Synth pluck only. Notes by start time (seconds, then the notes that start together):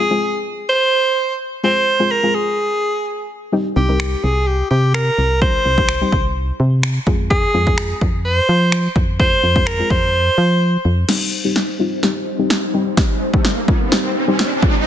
0.10 G#3 C4 F4 G#4
1.63 G#3 C4 F4 G#4
2.00 G#3 C4 F4 G#4
2.23 G#3 C4 F4 G#4
3.52 G3 C4 D#4 G4
3.76 G3 C4 D#4 G4
3.88 G3 C4 D#4 A#4
5.41 G3 C4 D#4 G4
5.78 G3 C4 D#4 G4
6.01 G3 C4 D#4 G4
7.07 G#3 C4 F4 G#4
7.54 G#3 C4 F4 G#4
7.66 G#3 C4 F4 G#4
9.19 G#3 C4 F4 G#4
9.55 G#3 C4 F4 G#4
9.79 G#3 C4 F4 G#4
11.08 G3 C4 D#4 G4
11.44 G3 C4 D#4 G4
11.79 G3 C4 D#4 F4
12.03 G3 C4 D#4 G4
12.39 G3 C4 D#4 G4
12.74 G3 C4 D#4 G4
12.97 G3 C4 D#4 G4
13.33 G3 C4 D#4 G4
13.68 G3 C4 D#4 F4
13.91 G3 C4 D#4 G4
14.28 G3 C4 D#4 G4
14.62 G#3 C4 F4 G#4